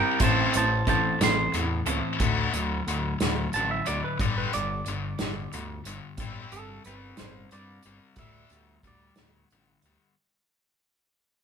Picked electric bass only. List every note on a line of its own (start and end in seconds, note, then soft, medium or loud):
0.20 0.47 A1 medium
0.55 0.81 A1 loud
0.87 1.14 A1 medium
1.21 1.47 A1 loud
1.54 1.80 E2 medium
1.86 2.00 C#2 medium
2.20 2.47 D2 medium
2.54 2.80 D2 medium
2.87 3.13 D2 medium
3.20 3.47 D2 loud
3.54 3.80 A1 medium
3.88 4.01 D2 medium
4.20 4.46 G1 medium
4.55 4.80 G1 medium
4.87 5.13 G1 medium
5.20 5.46 G1 medium
5.54 5.79 D2 medium
5.86 5.99 G1 medium
6.17 6.44 G1 medium
6.52 6.78 G1 medium
6.86 7.12 G1 medium
7.20 7.45 G1 loud
7.52 7.78 G2 medium
7.85 7.98 G1 medium
8.17 8.43 D2 medium
8.51 8.77 D2 medium
8.83 9.10 D2 medium
9.18 9.44 D2 loud
9.52 9.77 A1 medium
9.83 9.96 D2 medium